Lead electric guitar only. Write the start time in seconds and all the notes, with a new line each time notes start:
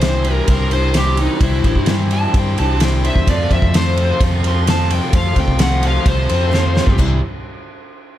Already playing: C5
0.34 A#4
0.50 A#4
0.73 C5
0.97 G4
1.21 D#4
1.43 E4
2.13 A5
2.37 G5
2.60 A5
2.82 G5
3.07 E5
3.29 D5
3.53 E5
3.77 C5
4.48 C6
4.70 A5
4.92 G5
5.15 F5
5.40 G5
5.62 F#5
5.87 F5
6.08 C5